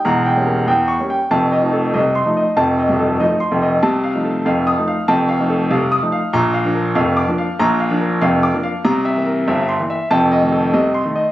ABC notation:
X:1
M:2/4
L:1/8
Q:1/4=95
K:Fmix
V:1 name="Grand piano"
(3b g B (3g ^c' g | (3a e A (3e c' e | (3a e A (3e c' e | (3a f A (3f e' f |
(3a f A (3f e' f | (3b f B (3f d' f | (3b f B (3f d' f | (3b =e B (3e c' e |
(3a e A (3e c' e |]
V:2 name="Grand piano" clef=bass
[=E,,,=E,,] [G,B,^C] [E,,=E,] [G,B,C] | [F,,,F,,] [F,A,E] [C,,C,] [F,A,E] | [F,,,F,,] [C,,,C,,] [F,A,E] [F,,,F,,] | [C,,C,] [F,A,E] [F,,,F,,] [F,A,E] |
[F,,,F,,] [F,A,E] [C,,C,] [F,A,E] | [B,,,B,,] [F,B,D] [F,,,F,,] [F,B,D] | [B,,,B,,] [F,B,D] [F,,,F,,] [F,B,D] | [C,,C,] [=E,B,] [G,,,G,,] [E,B,] |
[F,,,F,,] [E,A,] [C,,C,] [E,A,] |]